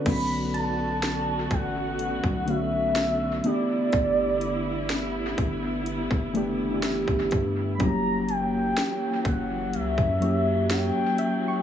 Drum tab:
CC |x---------------|----------------|----------------|
HH |x-x-x-x-x-x-x-x-|x-x-x-x-x-x-x-x-|x-x-x-x-x-x-x-x-|
SD |----o-------o---|----o-------o---|----o-------o---|
BD |o-----o--o------|o-----o--o---oo-|o-----o--o------|